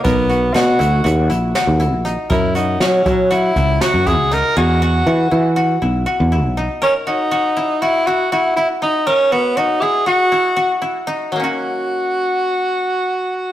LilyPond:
<<
  \new Staff \with { instrumentName = "Koto" } { \time 9/8 \key fis \mixolydian \tempo 4. = 80 ais'8 fis'8 fis'8 e'8 fis'8 e'8 fis'8 e'8 dis'8 | ais'8 fis'8 fis'8 e'8 fis'8 e'8 fis'8 e'8 dis'8 | gis'8 fis'8 fis'8 e'8 fis'8 e'8 fis'8 e'8 dis'8 | ais'8 fis'8 fis'8 e'8 fis'8 e'8 fis'8 e'8 dis'8 |
ais'8 fis'8 fis'8 e'8 fis'8 e'8 fis'8 e'8 dis'8 | <fis ais cis' fis'>1~ <fis ais cis' fis'>8 | }
  \new Staff \with { instrumentName = "Tenor saxophone" } { \time 9/8 \key fis \mixolydian b4 fis'4 r2 r8 | e'8 dis'8 cis'4 e'4 fis'8 gis'8 ais'8 | fis'2 r2 r8 | cis'8 dis'4. e'8 fis'8 e'8 e'8 dis'8 |
cis'8 b8 dis'8 gis'8 fis'4. r4 | fis'1~ fis'8 | }
  \new Staff \with { instrumentName = "Fretless electric bass" } { \clef bass \time 9/8 \key fis \mixolydian b,,4 b,8 d,8 dis,8 ais,,8 r16 dis,8 ais,,8 r16 | fis,4 fis8 fis4 cis,8 r16 fis,8 cis,8 r16 | e,4 e8 e4 b,,8 r16 e,8 b,,8 r16 | r1 r8 |
r1 r8 | r1 r8 | }
  \new DrumStaff \with { instrumentName = "Drums" } \drummode { \time 9/8 <hh bd>8 hh8 <hh sn>8 hh8 hh8 hh8 <hh sn>8 hh8 hh8 | <hh bd>8 hh8 <hh sn>8 <hh bd>8 hh8 <hh bd>8 <hh sn>8 <hh bd>8 hh8 | r4 r4 r4 r4. | r4 r4 r4 r4. |
r4 r4 r4 r4. | r4 r4 r4 r4. | }
>>